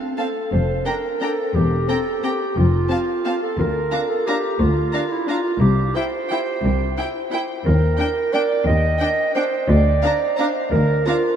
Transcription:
Already playing: clarinet C4
0.18 viola section C4, clarinet A4, violin section F5 A5
0.52 double bass section F1, cello section F2, clarinet C5
0.86 viola section D4, clarinet A#4, violin section G5 A#5
1.21 viola section D4, clarinet A4, violin section G5 A#5
1.55 double bass section E1, cello section E2, clarinet G4
1.89 viola section C4, clarinet A4, violin section G5 A#5
2.23 viola section C4, clarinet G4, violin section G5 A#5
2.57 double bass section F1, cello section F2, clarinet F4
2.90 viola section C4, violin section F5 A5
3.25 viola section C4, violin section F5 A5
3.43 clarinet A4
3.59 cello section D2, double bass section D2, clarinet A#4
3.92 viola section D4, violin section F5 A#5
4.09 clarinet A4
4.27 viola section D4, clarinet G4, violin section F5 A#5
4.60 double bass section D2, cello section D2, clarinet F4
4.93 viola section D4, violin section F5 A#5
5.12 clarinet E4
5.28 viola section D4, clarinet F4, violin section F5 A#5
5.61 double bass section C2, cello section C2, clarinet G4
5.96 viola section E4, clarinet C5, violin section G5
6.31 viola section E4, violin section G5
6.64 double bass section C2, cello section C2
6.98 viola section E4, violin section G5
7.32 viola section E4, violin section G5
7.66 cello section D#2, double bass section D#2, clarinet A#4
7.99 viola section D4, violin section G5
8.33 viola section D4, clarinet D5, violin section G5
8.67 double bass section D#2, cello section D#2, clarinet D#5
9.00 viola section D4, violin section G5
9.35 viola section D4, clarinet C5, violin section G5
9.68 double bass section D2, cello section D2, clarinet D5
10.03 viola section D4, violin section F5 A#5
10.37 viola section D4, clarinet C5, violin section F5 A#5
10.71 double bass section D2, cello section D2, clarinet A#4
11.06 viola section D4, clarinet F4, violin section F5 A#5

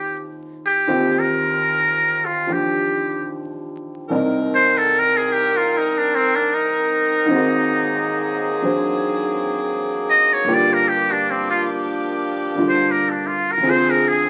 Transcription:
Already playing: grand piano D#2 D#3 C4 F4 G4, muted trumpet G4
0.66 muted trumpet G4
0.87 grand piano D#2 D#3 C4 F4 G4
1.19 muted trumpet A#4
2.25 muted trumpet F4
2.47 grand piano F3 D4 G4
2.53 muted trumpet G4
4.09 grand piano C2 C3 D5, saxophone section D#3 C4 A#4
4.14 grand piano D#4 A#4
4.55 muted trumpet C5
4.78 muted trumpet A4
4.99 muted trumpet A#4
5.17 muted trumpet G#4
5.33 muted trumpet G4
5.57 muted trumpet F4
5.78 muted trumpet D#4
5.98 muted trumpet D4
6.15 muted trumpet C4
6.36 muted trumpet D4
6.54 muted trumpet D#4
7.25 grand piano G#2 D#3, saxophone section F#3 A#3 G#4
7.29 saxophone section C4, grand piano C4 F#4
7.36 grand piano A#4
8.62 grand piano F#3 D4 G#4 C5
10.10 muted trumpet D#5
10.33 muted trumpet C#5
10.44 grand piano G2 D3 A#3 F4, saxophone section F3 D4 G4
10.48 grand piano G4
10.54 muted trumpet D5
10.74 muted trumpet A#4
10.88 muted trumpet G4
11.12 muted trumpet D4
11.31 muted trumpet C4
11.50 muted trumpet F4
12.55 grand piano D3 G3 D4 F4
12.69 muted trumpet C5
12.91 muted trumpet A#4
13.10 muted trumpet D4
13.27 muted trumpet F4
13.52 muted trumpet A#4
13.57 grand piano D2 D3
13.63 saxophone section F3 C4 G#4, grand piano C4 F4
13.69 grand piano G#4, muted trumpet C5
13.90 muted trumpet A#4
14.08 muted trumpet G#4

